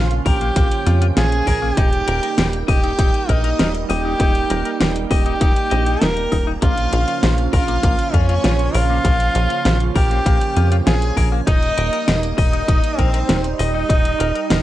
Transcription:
Already playing: A#1 C#3 F3 A#3 C#4 F4 F5
0.11 closed hi-hat
0.26 A#1 G4 A#4 G5, kick, open hi-hat
0.41 A#3, closed hi-hat
0.56 A#1 A#3, kick, closed hi-hat
0.71 closed hi-hat
0.86 F2 F4, closed hi-hat
1.02 F4, closed hi-hat
1.17 A#1 F4 G#4 G#5, snare, closed hi-hat
1.32 closed hi-hat
1.47 A#1 A#4, kick, open hi-hat
1.62 A#3
1.77 D#1 G3 D#4 G4 G5, kick, closed hi-hat
1.93 closed hi-hat
2.08 D#1 A#4, closed hi-hat
2.23 A#4, closed hi-hat
2.38 D#1 A#4, snare, closed hi-hat
2.53 closed hi-hat
2.68 D#1 G4 D#5 G5, kick, open hi-hat
2.83 D#4, closed hi-hat
2.99 D#1 D#4, kick, closed hi-hat
3.14 closed hi-hat
3.29 A#1 D#4 A#4 D#5, kick, closed hi-hat
3.44 A#4, closed hi-hat
3.59 D#1 A#4, snare, closed hi-hat
3.74 closed hi-hat
3.89 D#1 G4 D#5 G5, open hi-hat
4.05 D#4
4.20 D#1 D#4, kick, closed hi-hat
4.35 closed hi-hat
4.50 D#1 A#4, closed hi-hat
4.65 A#4, closed hi-hat
4.80 D#1 A#4, snare, closed hi-hat
4.96 closed hi-hat
5.11 D#1 G4 D#5 G5, kick, open hi-hat
5.26 D#4, closed hi-hat
5.41 D#1 D#4, kick, closed hi-hat
5.56 closed hi-hat
5.71 A#1 D#5, closed hi-hat
5.86 D#4, closed hi-hat
6.02 D#1 D#4 A#4 A#5, snare, closed hi-hat
6.17 closed hi-hat
6.32 D#1 D#4, kick, open hi-hat
6.47 D#4
6.62 A#1 C#3 F3 A#3 C#4 F4 F5, kick, closed hi-hat
6.77 closed hi-hat
6.92 A#1 F4, closed hi-hat
7.08 F4, closed hi-hat
7.23 A#1 F4, snare, closed hi-hat
7.38 closed hi-hat
7.53 A#1 F4 A#4 F5, kick, open hi-hat
7.68 A#3, closed hi-hat
7.83 A#1 A#3, kick, closed hi-hat
7.99 closed hi-hat
8.14 F2 C#4 F4 C#5, kick, closed hi-hat
8.29 F4, closed hi-hat
8.44 A#1 F4, snare, closed hi-hat
8.59 closed hi-hat
8.74 A#1 F4 A#4 F5, open hi-hat
8.89 A#3
9.05 A#1 A#3, kick, closed hi-hat
9.20 closed hi-hat
9.35 A#1 F4, closed hi-hat
9.50 F4, closed hi-hat
9.65 A#1 F4, snare, closed hi-hat
9.80 closed hi-hat
9.96 A#1 G4 A#4 G5, kick, open hi-hat
10.11 A#3, closed hi-hat
10.26 A#1 A#3, kick, closed hi-hat
10.41 closed hi-hat
10.56 F2 F4, closed hi-hat
10.71 F4, closed hi-hat
10.86 A#1 F4 G#4 G#5, snare, closed hi-hat
11.02 closed hi-hat
11.17 A#1 A#4, kick, open hi-hat
11.32 A#3
11.47 D#1 G3 A#3 D#4 D#5, kick, closed hi-hat
11.62 closed hi-hat
11.78 D#1 A#4, closed hi-hat
11.93 A#4, closed hi-hat
12.08 D#1 A#4, snare, closed hi-hat
12.23 closed hi-hat
12.38 D#1 D#4 D#5, kick, open hi-hat
12.53 D#4, closed hi-hat
12.68 D#1 D#4, kick, closed hi-hat
12.84 closed hi-hat
12.98 A#1 C4 A#4 C5, kick, closed hi-hat
13.14 A#4, closed hi-hat
13.29 D#1 A#4, snare, closed hi-hat
13.44 closed hi-hat
13.59 D#1 D#4 D#5, open hi-hat
13.74 D#4
13.89 D#1 D#4, kick, closed hi-hat
14.05 closed hi-hat
14.20 D#1 A#4, closed hi-hat
14.35 A#4, closed hi-hat
14.50 D#1 A#4, snare, closed hi-hat

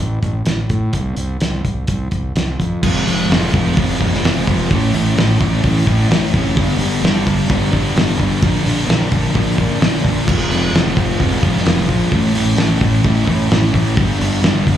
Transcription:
0.00 A1
0.23 A1, kick, closed hi-hat
0.46 A1, snare, closed hi-hat
0.69 A2, kick, closed hi-hat
0.93 C2, kick, closed hi-hat
1.17 C2, closed hi-hat
1.40 C2, snare, closed hi-hat
1.64 C2, kick, closed hi-hat
1.87 C2, kick, closed hi-hat
2.11 C2, kick, closed hi-hat
2.35 C2, snare, closed hi-hat
2.60 F2, kick, closed hi-hat
2.83 F1 F3 G#3 C4 F4, kick, crash
3.07 F1 G#3 C4 F4, open hi-hat
3.30 F1 F3 G#3 C4 F4, snare, open hi-hat
3.53 F1 G#3 C4 F4, kick, open hi-hat
3.77 F1 F3 G#3 C4 F4, kick, open hi-hat
4.00 F1 F3 G#3 C4 F4, kick, open hi-hat
4.14 snare
4.23 F1 F3 G#3 C4 F4, snare, open hi-hat
4.47 F1 G#3 C4 F4, kick, open hi-hat
4.70 A1 A2 E3 A3 C#4 E4, kick, open hi-hat
4.94 A1 A3 C#4 E4, open hi-hat
5.16 A1 A2 E3 A3 C#4 E4, snare, open hi-hat
5.39 A1 A3 C#4 E4, kick, open hi-hat
5.63 A1 E3 A3 C#4 E4, kick, open hi-hat
5.86 A1 A2 E3 A3 C#4 E4, kick, open hi-hat
6.09 A1 E3 A3 C#4 E4, snare, open hi-hat
6.33 F1 A3 C#4 E4, kick, open hi-hat
6.55 G1 G2 D3 G3 B3 D4, kick, open hi-hat
6.79 G1 B3 D4, open hi-hat
6.83 G3
7.02 G1 G2 D3 G3 B3 D4, snare, open hi-hat
7.24 G1 G3 B3 D4, kick, open hi-hat
7.48 G1 D3 G3 B3 D4, kick, open hi-hat
7.71 G1 G2 D3 G3 B3 D4, kick, open hi-hat
7.94 G1 D3 G3 B3 D4, snare, open hi-hat
8.17 G1 G3 B3 D4, kick, open hi-hat
8.41 A#1 A#2 D3 F3 A#3 D4, kick, open hi-hat
8.64 A#1 F3 A#3 D4, open hi-hat
8.87 A#1 A#2 D3 F3 A#3 D4, snare, open hi-hat
9.11 A#1 F3 A#3 D4, kick, open hi-hat
9.35 A#1 D3 F3 A#3 D4, kick, open hi-hat
9.56 A#1 A#2 D3 F3 A#3 D4, kick, open hi-hat
9.80 A#1 D3 F3 A#3 D4, snare, open hi-hat
10.03 A#1 F3 A#3 D4, kick, open hi-hat
10.26 F1 F3 G#3 C4 F4, kick, crash
10.49 F1 G#3 C4 F4, open hi-hat
10.73 F1 F3 G#3 C4 F4, snare, open hi-hat
10.96 F1 G#3 C4 F4, kick, open hi-hat
11.18 F1 F3 G#3 C4 F4, kick, open hi-hat
11.41 F1 F3 G#3 C4 F4, kick, open hi-hat
11.57 snare
11.64 F1 F3 G#3 C4 F4, snare, open hi-hat
11.87 A#1 G#3 C4 F4, kick, open hi-hat
12.11 A1 A2 E3 A3 C#4 E4, kick, open hi-hat
12.35 A1 A3 C#4 E4, open hi-hat
12.57 A1 A2 E3 A3 C#4 E4, snare, open hi-hat
12.81 A1 A3 C#4 E4, kick, open hi-hat
13.04 A1 E3 A3 C#4 E4, kick, open hi-hat
13.26 A1 A2 E3 A3 C#4 E4, kick, open hi-hat
13.51 A1 E3 A3 C#4 E4, snare, open hi-hat
13.73 A1 A3 C#4 E4, kick, open hi-hat
13.96 G1 G2 D3 G3 B3 D4, kick, open hi-hat
14.19 G1 G3 B3 D4, open hi-hat
14.43 G1 G2 D3 G3 B3 D4, snare, open hi-hat
14.66 G1 G3 B3 D4, kick, open hi-hat

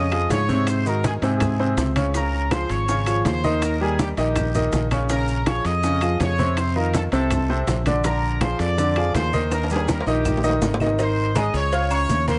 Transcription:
Already playing: F2 D#5 D#6
0.12 F3 F4 G#4, high conga, high timbale, claves
0.30 G#2 C#5 C#6, high bongo, low bongo, high conga, high timbale, low timbale, short guiro, maracas
0.49 C3 C4 C5, high conga, short guiro, maracas
0.67 C5 C6, high bongo, high conga, high timbale, long guiro, claves, maracas
0.86 D#3 D#4 F#4 A#4 A#5, high conga, maracas
1.04 G#4 G#5, high bongo, high conga, high timbale, short guiro, maracas
1.22 G#2 C3 C4 G#4 C5 G#5, high bongo, high conga, high timbale, short guiro, maracas
1.40 high bongo, high conga, low conga, high timbale, long guiro, claves, maracas
1.59 C3 C4 C5, high bongo, high conga
1.77 C#2, high bongo, low bongo, high conga, high timbale, short guiro, maracas
1.96 C#3 C#4 C#5, high bongo, high conga, high timbale, short guiro, claves, maracas
2.14 C#3 C#4 A#4 C#5 A#5, high bongo, high conga, high timbale, long guiro, maracas
2.33 high conga
2.51 F3 F4 G#4 C5 C6, high bongo, high conga, high timbale, short guiro, claves, maracas
2.69 G#1 C#5 C#6, high conga, high timbale, short guiro, maracas
2.88 C#3 C#4 C#5, high bongo, high conga, long guiro, maracas
3.06 F3 F4 G#4, high conga, high timbale, claves, maracas
3.25 D#2 C5 C6, high bongo, low bongo, high conga, high timbale, low timbale, short guiro, maracas
3.44 D#3 D#4 D#5, high conga, short guiro, maracas
3.62 A#4 A#5, high bongo, high conga, high timbale, long guiro, claves, maracas
3.81 G3 G4 G#4 A#4 G#5, high conga
3.99 G4 G5, high bongo, high conga, high timbale, short guiro, maracas
4.17 A#1 D#3 D#4 G4 D#5 G5, high bongo, high conga, high timbale, short guiro, maracas
4.36 high bongo, high conga, low conga, high timbale, long guiro, claves, maracas
4.54 D#3 D#4 D#5, high bongo, high conga, low conga, maracas
4.72 A#1, high bongo, low bongo, high conga, high timbale, short guiro, maracas
4.91 C#3 C#4 C#5, high bongo, high conga, high timbale, short guiro, claves, maracas
5.09 C#3 C#4 A#4 C#5 A#5, high bongo, high conga, high timbale, long guiro, maracas
5.28 high conga, maracas
5.46 F3 F4 G#4 C#5 C#6, high bongo, high conga, high timbale, short guiro, claves, maracas
5.65 F2 D#5 D#6, high conga, high timbale, short guiro, maracas
5.83 C#3 C#4 C#5, high bongo, high conga, long guiro, maracas
6.01 F3 F4 G#4, high conga, high timbale, claves, maracas
6.20 F2 C#5 C#6, high bongo, low bongo, high conga, high timbale, low timbale, short guiro, maracas
6.38 C3 C4 C5, high conga, short guiro, maracas
6.57 C5 C6, high bongo, high conga, high timbale, long guiro, claves, maracas
6.76 D#3 D#4 F4 A#4 A#5, high conga
6.94 A4 A5, high bongo, high conga, high timbale, short guiro, maracas
7.12 C2 C3 C4 A4 C5 A5, high bongo, high conga, high timbale, short guiro, maracas
7.31 high bongo, high conga, low conga, high timbale, long guiro, claves, maracas
7.49 C3 C4 C5, high bongo, high conga
7.67 A#1, high bongo, low bongo, high conga, high timbale, low timbale, short guiro, maracas
7.86 D3 D4 D5, high bongo, high conga, high timbale, short guiro, claves, maracas
8.04 D3 D4 A#4 D5 A#5, high bongo, high timbale, long guiro, maracas
8.23 high conga
8.41 F3 F4 G#4 C5 C6, high bongo, high conga, high timbale, short guiro, claves, maracas
8.59 F2 D5 D6, high conga, high timbale, short guiro, maracas
8.78 D3 D4 D5, high bongo, high conga, long guiro, maracas
8.96 F3 F4 G#4, high conga, high timbale, claves
9.14 D#2 C5 C6, high bongo, low bongo, high conga, high timbale, low timbale, short guiro, maracas
9.33 D#3 D#4 D#5, high conga, short guiro, maracas
9.51 A#4 A#5, high bongo, high conga, high timbale, long guiro, claves, maracas
9.64 high timbale
9.70 G3 G4 G#4 A#4 G#5, high conga, maracas
9.76 high timbale
9.88 A#4 A#5, high bongo, high conga, high timbale, short guiro, maracas
10.01 low timbale
10.06 A#1 D#3 D#4 G4 D#5 G5, high bongo, high conga, short guiro, maracas
10.25 high bongo, high conga, low conga, long guiro, claves, maracas
10.37 low timbale
10.44 D#3 D#4 D#5, high bongo, high conga, maracas
10.50 low timbale
10.62 G#1, high bongo, low bongo, high conga, low timbale, short guiro, maracas
10.74 low timbale
10.80 D#3 D#4 D#5, high bongo, high conga, short guiro, claves, maracas
10.86 low timbale
10.98 D#3 D#4 C5 D#5 C6, cowbell, high conga, long guiro, maracas
11.17 high conga
11.35 G#3 G#4 D#5 G#5 D#6, cowbell, high conga, low agogo, short guiro, claves, maracas
11.54 C#2 C#5 C#6, cowbell, high conga, short guiro, maracas
11.72 F4 F5 F6, cowbell, high conga, low agogo, long guiro, maracas
11.90 C#4 C#5 C#6, high conga, low agogo, claves, maracas
12.09 D#2, cowbell, high conga, low timbale, short guiro, maracas
12.28 A#3 A#4 C5 A#5 C6, cowbell, high conga, low agogo, short guiro, maracas

